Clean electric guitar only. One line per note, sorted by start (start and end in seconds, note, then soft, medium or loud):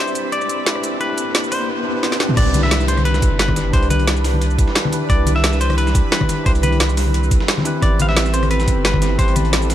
0.00 0.32 C5 loud
0.32 1.00 D5 loud
1.01 1.51 B4 loud
1.52 1.68 C5 medium
2.37 2.63 D5 loud
2.63 2.86 E5 loud
2.88 3.05 C5 medium
3.05 3.38 B4 loud
3.39 3.71 B4 medium
3.73 3.90 C5 medium
3.90 4.22 B4 medium
5.10 5.35 D5 loud
5.36 5.60 E5 loud
5.61 5.77 C5 loud
5.78 6.11 B4 loud
6.12 6.46 B4 medium
6.46 6.51 C5 medium
6.63 6.95 B4 medium
7.83 8.00 D5 loud
8.02 8.08 F5 medium
8.09 8.34 E5 loud
8.34 8.50 C5 medium
8.51 8.84 B4 medium
8.85 9.18 B4 medium
9.19 9.36 C5 loud
9.36 9.70 B4 medium